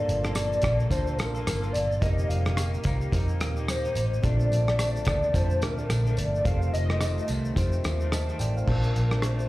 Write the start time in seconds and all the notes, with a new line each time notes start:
Already playing: A#2 F3 G3 A#3 D4 F4 A4 D5 A5
0.09 G1, closed hi-hat, shaker
0.24 A#3 F4 A4, cross-stick, shaker
0.35 D5, cross-stick, closed hi-hat, tambourine, shaker
0.53 shaker
0.62 A#1 G3 A#3 F4 A4, kick, cross-stick, closed hi-hat, tambourine, shaker
0.80 shaker
0.89 D2 G3 A#3 D4 F4 C5 A5, kick, closed hi-hat, tambourine, shaker
0.94 A4
1.07 shaker
1.18 A#1 A#4, cross-stick, closed hi-hat, tambourine, shaker
1.34 A#3 F4 A4, shaker
1.47 G1, cross-stick, closed hi-hat, tambourine, shaker
1.62 A#3 F4 A4, shaker
1.73 G1 D5, closed hi-hat, tambourine, shaker
1.92 shaker
2.01 F1 D#3 F3 A#3 C4 D#4 G4 A#4 D#5, kick, closed hi-hat, tambourine, shaker
2.19 shaker
2.28 F1 F5, closed hi-hat, tambourine, shaker
2.46 A#3 D#4 G4, cross-stick, shaker
2.57 cross-stick, closed hi-hat, tambourine, shaker
2.74 shaker
2.84 C2 F3 A#3 D#4, kick, closed hi-hat, tambourine, shaker
2.88 G4
3.01 shaker
3.12 F2 F3 A#3 C4 D#4 G4 A#4, kick, closed hi-hat, tambourine, shaker
3.28 shaker
3.40 D#2, cross-stick, closed hi-hat, tambourine, shaker
3.56 A#3 D#4 G4, shaker
3.68 C5, cross-stick, closed hi-hat, tambourine, shaker
3.84 A#3 D#4 G4, shaker
3.95 A1, closed hi-hat, tambourine, shaker
4.13 shaker
4.22 A#1 A#2 D3 F3 A3 C4 D4 F4 A4 D5 A5, kick, closed hi-hat, tambourine, shaker
4.40 shaker
4.51 A#1, closed hi-hat, tambourine, shaker
4.67 F3 A3 D4, cross-stick, shaker
4.79 D5, cross-stick, closed hi-hat, tambourine, shaker
4.96 shaker
5.05 D2 A#2 F3 A3 D4, kick, cross-stick, closed hi-hat, tambourine, shaker
5.23 shaker
5.33 F2 A#2 F3 A3 C4 D4 F4 C5 A5, kick, closed hi-hat, tambourine, shaker
5.50 shaker
5.62 D2 A#4, cross-stick, closed hi-hat, tambourine, shaker
5.77 F3 A3 D4, shaker
5.89 A#1, cross-stick, closed hi-hat, tambourine, shaker
6.05 F3 A3 D4, shaker
6.17 G1 D5, closed hi-hat, tambourine, shaker
6.35 shaker
6.44 F1 F2 D#3 A3 C4 D#4 F4 G4 A4 F5, kick, closed hi-hat, shaker
6.62 shaker
6.73 F1 D#5, closed hi-hat, tambourine, shaker
6.89 D#3 A3 C4, cross-stick, shaker
7.01 cross-stick, closed hi-hat, tambourine, shaker
7.18 shaker
7.28 C2 F2 D#3 A3 C4, closed hi-hat, tambourine, shaker
7.45 shaker
7.55 F2 D#3 A3 C4 D#4 G4 C5, kick, closed hi-hat, tambourine, shaker
7.59 C4
7.72 shaker
7.84 D#2, cross-stick, closed hi-hat, tambourine, shaker
8.00 D#3 A3 C4, shaker
8.12 D#5 A5, cross-stick, closed hi-hat, tambourine, shaker
8.27 D#3 A3 C4, shaker
8.39 A1 D5 G5, closed hi-hat, tambourine, shaker
8.57 C5 F5, shaker
8.66 A#1 A#2 F3 C4 D4 F4 A#4 A5, kick, crash
8.83 shaker
8.96 A#1, closed hi-hat, shaker
9.11 F3 A3 D4, cross-stick, shaker
9.22 C5, cross-stick, closed hi-hat, shaker
9.39 shaker